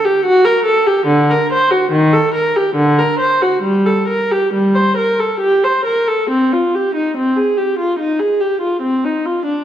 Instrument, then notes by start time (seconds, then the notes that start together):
viola
0.05 G4
0.26 F#4
0.45 A#4
0.65 A4
0.87 G4
1.07 D3
1.31 A#4
1.53 C5
1.71 F#4
1.92 D#3
2.13 A4
2.35 A#4
2.56 G4
2.76 D3
2.99 A#4
3.20 C5
3.42 F#4
3.63 G3
3.86 A4
4.08 A#4
4.32 G4
4.53 G3
4.75 C5
4.97 A#4
5.20 A4
5.40 G4
5.64 C5
5.86 A#4
6.07 A4
6.30 C4
6.53 F4
6.75 G4
6.95 D#4
7.17 C4
7.37 G#4
7.57 G4
7.79 F4
7.99 D#4
8.20 G#4
8.40 G4
8.61 F4
8.82 C4
9.05 D#4
9.26 F4
9.46 D4